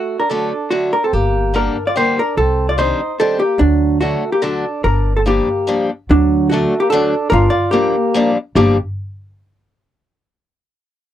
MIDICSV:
0, 0, Header, 1, 5, 480
1, 0, Start_track
1, 0, Key_signature, -2, "minor"
1, 0, Tempo, 415225
1, 1298, Time_signature, 3, 2, 24, 8
1, 7524, Tempo, 411241
1, 12927, End_track
2, 0, Start_track
2, 0, Title_t, "Hollow-body jazz guitar"
2, 0, Program_c, 0, 26
2, 0, Note_on_c, 0, 66, 93
2, 226, Note_on_c, 0, 70, 68
2, 231, Note_off_c, 0, 66, 0
2, 339, Note_off_c, 0, 70, 0
2, 339, Note_on_c, 0, 69, 73
2, 815, Note_on_c, 0, 66, 65
2, 833, Note_off_c, 0, 69, 0
2, 1074, Note_on_c, 0, 70, 77
2, 1075, Note_off_c, 0, 66, 0
2, 1190, Note_off_c, 0, 70, 0
2, 1203, Note_on_c, 0, 69, 66
2, 1308, Note_off_c, 0, 69, 0
2, 1308, Note_on_c, 0, 67, 89
2, 1796, Note_off_c, 0, 67, 0
2, 1801, Note_on_c, 0, 70, 72
2, 2163, Note_on_c, 0, 74, 75
2, 2169, Note_off_c, 0, 70, 0
2, 2274, Note_off_c, 0, 74, 0
2, 2279, Note_on_c, 0, 72, 95
2, 2527, Note_off_c, 0, 72, 0
2, 2535, Note_on_c, 0, 70, 90
2, 2736, Note_off_c, 0, 70, 0
2, 2745, Note_on_c, 0, 69, 103
2, 3110, Note_on_c, 0, 74, 67
2, 3114, Note_off_c, 0, 69, 0
2, 3216, Note_off_c, 0, 74, 0
2, 3221, Note_on_c, 0, 72, 101
2, 3696, Note_on_c, 0, 69, 88
2, 3706, Note_off_c, 0, 72, 0
2, 3921, Note_off_c, 0, 69, 0
2, 3926, Note_on_c, 0, 67, 83
2, 4152, Note_on_c, 0, 62, 102
2, 4165, Note_off_c, 0, 67, 0
2, 4599, Note_off_c, 0, 62, 0
2, 4630, Note_on_c, 0, 66, 83
2, 4971, Note_off_c, 0, 66, 0
2, 4998, Note_on_c, 0, 67, 71
2, 5110, Note_off_c, 0, 67, 0
2, 5110, Note_on_c, 0, 69, 85
2, 5591, Note_off_c, 0, 69, 0
2, 5595, Note_on_c, 0, 70, 88
2, 5936, Note_off_c, 0, 70, 0
2, 5971, Note_on_c, 0, 69, 62
2, 6021, Note_off_c, 0, 69, 0
2, 6099, Note_on_c, 0, 67, 71
2, 6779, Note_off_c, 0, 67, 0
2, 7059, Note_on_c, 0, 62, 100
2, 7068, Note_on_c, 0, 54, 59
2, 7509, Note_on_c, 0, 66, 83
2, 7546, Note_off_c, 0, 62, 0
2, 7741, Note_off_c, 0, 54, 0
2, 7864, Note_on_c, 0, 67, 80
2, 7893, Note_off_c, 0, 66, 0
2, 7976, Note_off_c, 0, 67, 0
2, 7981, Note_on_c, 0, 69, 100
2, 8440, Note_off_c, 0, 69, 0
2, 8445, Note_on_c, 0, 70, 115
2, 8485, Note_on_c, 0, 65, 100
2, 8682, Note_on_c, 0, 74, 96
2, 8716, Note_off_c, 0, 70, 0
2, 8927, Note_on_c, 0, 67, 78
2, 8940, Note_off_c, 0, 74, 0
2, 8958, Note_on_c, 0, 58, 54
2, 9161, Note_off_c, 0, 65, 0
2, 9626, Note_off_c, 0, 67, 0
2, 9642, Note_off_c, 0, 58, 0
2, 9924, Note_on_c, 0, 67, 85
2, 10153, Note_off_c, 0, 67, 0
2, 12927, End_track
3, 0, Start_track
3, 0, Title_t, "Accordion"
3, 0, Program_c, 1, 21
3, 0, Note_on_c, 1, 57, 68
3, 196, Note_off_c, 1, 57, 0
3, 228, Note_on_c, 1, 62, 76
3, 324, Note_off_c, 1, 62, 0
3, 341, Note_on_c, 1, 62, 82
3, 820, Note_off_c, 1, 62, 0
3, 827, Note_on_c, 1, 57, 60
3, 1056, Note_off_c, 1, 57, 0
3, 1082, Note_on_c, 1, 62, 67
3, 1183, Note_off_c, 1, 62, 0
3, 1195, Note_on_c, 1, 60, 58
3, 1297, Note_off_c, 1, 60, 0
3, 1299, Note_on_c, 1, 58, 87
3, 1783, Note_off_c, 1, 58, 0
3, 1791, Note_on_c, 1, 62, 75
3, 2127, Note_off_c, 1, 62, 0
3, 2156, Note_on_c, 1, 65, 67
3, 2260, Note_off_c, 1, 65, 0
3, 2260, Note_on_c, 1, 67, 70
3, 2493, Note_off_c, 1, 67, 0
3, 2521, Note_on_c, 1, 62, 70
3, 2729, Note_off_c, 1, 62, 0
3, 2757, Note_on_c, 1, 60, 81
3, 3084, Note_off_c, 1, 60, 0
3, 3115, Note_on_c, 1, 65, 77
3, 3214, Note_off_c, 1, 65, 0
3, 3214, Note_on_c, 1, 63, 69
3, 3655, Note_off_c, 1, 63, 0
3, 3695, Note_on_c, 1, 60, 74
3, 3921, Note_off_c, 1, 60, 0
3, 3957, Note_on_c, 1, 58, 71
3, 4159, Note_off_c, 1, 58, 0
3, 4160, Note_on_c, 1, 54, 69
3, 4603, Note_off_c, 1, 54, 0
3, 4637, Note_on_c, 1, 57, 77
3, 4974, Note_off_c, 1, 57, 0
3, 4989, Note_on_c, 1, 58, 67
3, 5101, Note_off_c, 1, 58, 0
3, 5113, Note_on_c, 1, 62, 65
3, 5575, Note_off_c, 1, 62, 0
3, 5592, Note_on_c, 1, 62, 82
3, 5934, Note_off_c, 1, 62, 0
3, 5968, Note_on_c, 1, 60, 72
3, 6019, Note_off_c, 1, 60, 0
3, 6074, Note_on_c, 1, 58, 61
3, 6767, Note_off_c, 1, 58, 0
3, 7050, Note_on_c, 1, 54, 68
3, 7494, Note_off_c, 1, 54, 0
3, 7514, Note_on_c, 1, 57, 88
3, 7859, Note_off_c, 1, 57, 0
3, 7870, Note_on_c, 1, 58, 83
3, 7973, Note_on_c, 1, 62, 74
3, 7985, Note_off_c, 1, 58, 0
3, 8428, Note_off_c, 1, 62, 0
3, 8448, Note_on_c, 1, 62, 95
3, 8691, Note_off_c, 1, 62, 0
3, 8699, Note_on_c, 1, 65, 82
3, 8924, Note_off_c, 1, 65, 0
3, 8925, Note_on_c, 1, 58, 86
3, 9625, Note_off_c, 1, 58, 0
3, 9934, Note_on_c, 1, 58, 69
3, 10159, Note_off_c, 1, 58, 0
3, 12927, End_track
4, 0, Start_track
4, 0, Title_t, "Steel-string acoustic guitar"
4, 0, Program_c, 2, 25
4, 343, Note_on_c, 2, 50, 40
4, 354, Note_on_c, 2, 54, 39
4, 359, Note_on_c, 2, 57, 54
4, 367, Note_on_c, 2, 62, 47
4, 589, Note_off_c, 2, 50, 0
4, 589, Note_off_c, 2, 54, 0
4, 596, Note_off_c, 2, 57, 0
4, 597, Note_off_c, 2, 62, 0
4, 819, Note_on_c, 2, 50, 51
4, 823, Note_on_c, 2, 54, 46
4, 825, Note_on_c, 2, 57, 51
4, 832, Note_on_c, 2, 62, 43
4, 1069, Note_off_c, 2, 50, 0
4, 1069, Note_off_c, 2, 54, 0
4, 1073, Note_off_c, 2, 57, 0
4, 1074, Note_off_c, 2, 62, 0
4, 1777, Note_on_c, 2, 50, 43
4, 1784, Note_on_c, 2, 55, 38
4, 1787, Note_on_c, 2, 58, 42
4, 1797, Note_on_c, 2, 62, 47
4, 2031, Note_off_c, 2, 50, 0
4, 2034, Note_off_c, 2, 55, 0
4, 2037, Note_off_c, 2, 58, 0
4, 2038, Note_off_c, 2, 62, 0
4, 2262, Note_on_c, 2, 50, 54
4, 2272, Note_on_c, 2, 55, 46
4, 2277, Note_on_c, 2, 58, 57
4, 2287, Note_on_c, 2, 62, 45
4, 2511, Note_off_c, 2, 50, 0
4, 2517, Note_off_c, 2, 55, 0
4, 2520, Note_off_c, 2, 58, 0
4, 2521, Note_off_c, 2, 62, 0
4, 3211, Note_on_c, 2, 51, 49
4, 3218, Note_on_c, 2, 55, 42
4, 3228, Note_on_c, 2, 60, 45
4, 3232, Note_on_c, 2, 62, 62
4, 3460, Note_off_c, 2, 51, 0
4, 3464, Note_off_c, 2, 55, 0
4, 3466, Note_off_c, 2, 60, 0
4, 3470, Note_off_c, 2, 62, 0
4, 3694, Note_on_c, 2, 51, 60
4, 3699, Note_on_c, 2, 55, 42
4, 3704, Note_on_c, 2, 60, 54
4, 3711, Note_on_c, 2, 62, 71
4, 3938, Note_off_c, 2, 51, 0
4, 3940, Note_off_c, 2, 55, 0
4, 3943, Note_off_c, 2, 60, 0
4, 3946, Note_off_c, 2, 62, 0
4, 4633, Note_on_c, 2, 50, 42
4, 4643, Note_on_c, 2, 54, 36
4, 4644, Note_on_c, 2, 57, 46
4, 4652, Note_on_c, 2, 62, 48
4, 4884, Note_off_c, 2, 50, 0
4, 4885, Note_off_c, 2, 54, 0
4, 4890, Note_off_c, 2, 62, 0
4, 4891, Note_off_c, 2, 57, 0
4, 5107, Note_on_c, 2, 50, 55
4, 5113, Note_on_c, 2, 54, 60
4, 5116, Note_on_c, 2, 57, 52
4, 5126, Note_on_c, 2, 62, 57
4, 5360, Note_off_c, 2, 50, 0
4, 5363, Note_off_c, 2, 54, 0
4, 5366, Note_off_c, 2, 57, 0
4, 5366, Note_off_c, 2, 62, 0
4, 6077, Note_on_c, 2, 53, 48
4, 6083, Note_on_c, 2, 58, 47
4, 6088, Note_on_c, 2, 55, 37
4, 6094, Note_on_c, 2, 62, 59
4, 6330, Note_off_c, 2, 53, 0
4, 6332, Note_off_c, 2, 55, 0
4, 6333, Note_off_c, 2, 58, 0
4, 6339, Note_off_c, 2, 62, 0
4, 6555, Note_on_c, 2, 53, 53
4, 6560, Note_on_c, 2, 55, 55
4, 6567, Note_on_c, 2, 58, 44
4, 6572, Note_on_c, 2, 62, 62
4, 6811, Note_off_c, 2, 53, 0
4, 6813, Note_off_c, 2, 55, 0
4, 6817, Note_off_c, 2, 58, 0
4, 6819, Note_off_c, 2, 62, 0
4, 7528, Note_on_c, 2, 50, 48
4, 7539, Note_on_c, 2, 54, 44
4, 7546, Note_on_c, 2, 57, 55
4, 7556, Note_on_c, 2, 62, 61
4, 7779, Note_off_c, 2, 50, 0
4, 7780, Note_off_c, 2, 54, 0
4, 7787, Note_off_c, 2, 57, 0
4, 7788, Note_off_c, 2, 62, 0
4, 8007, Note_on_c, 2, 50, 74
4, 8011, Note_on_c, 2, 54, 60
4, 8017, Note_on_c, 2, 57, 51
4, 8022, Note_on_c, 2, 62, 73
4, 8252, Note_off_c, 2, 54, 0
4, 8253, Note_off_c, 2, 50, 0
4, 8258, Note_off_c, 2, 57, 0
4, 8258, Note_off_c, 2, 62, 0
4, 8944, Note_on_c, 2, 53, 49
4, 8947, Note_on_c, 2, 58, 53
4, 8954, Note_on_c, 2, 55, 38
4, 8955, Note_on_c, 2, 62, 57
4, 9199, Note_off_c, 2, 53, 0
4, 9202, Note_off_c, 2, 55, 0
4, 9202, Note_off_c, 2, 58, 0
4, 9205, Note_off_c, 2, 62, 0
4, 9432, Note_on_c, 2, 53, 69
4, 9442, Note_on_c, 2, 55, 64
4, 9445, Note_on_c, 2, 58, 61
4, 9458, Note_on_c, 2, 62, 63
4, 9685, Note_off_c, 2, 53, 0
4, 9690, Note_off_c, 2, 55, 0
4, 9693, Note_off_c, 2, 58, 0
4, 9695, Note_off_c, 2, 62, 0
4, 9917, Note_on_c, 2, 53, 69
4, 9924, Note_on_c, 2, 55, 74
4, 9924, Note_on_c, 2, 58, 66
4, 9925, Note_on_c, 2, 62, 73
4, 10149, Note_off_c, 2, 62, 0
4, 10151, Note_off_c, 2, 58, 0
4, 10152, Note_off_c, 2, 53, 0
4, 10153, Note_off_c, 2, 55, 0
4, 12927, End_track
5, 0, Start_track
5, 0, Title_t, "Upright bass"
5, 0, Program_c, 3, 32
5, 1305, Note_on_c, 3, 31, 74
5, 1931, Note_off_c, 3, 31, 0
5, 2741, Note_on_c, 3, 36, 83
5, 3357, Note_off_c, 3, 36, 0
5, 4166, Note_on_c, 3, 38, 91
5, 4784, Note_off_c, 3, 38, 0
5, 5595, Note_on_c, 3, 31, 94
5, 6225, Note_off_c, 3, 31, 0
5, 7045, Note_on_c, 3, 38, 94
5, 7667, Note_off_c, 3, 38, 0
5, 8469, Note_on_c, 3, 31, 107
5, 8632, Note_off_c, 3, 31, 0
5, 9912, Note_on_c, 3, 31, 94
5, 10147, Note_off_c, 3, 31, 0
5, 12927, End_track
0, 0, End_of_file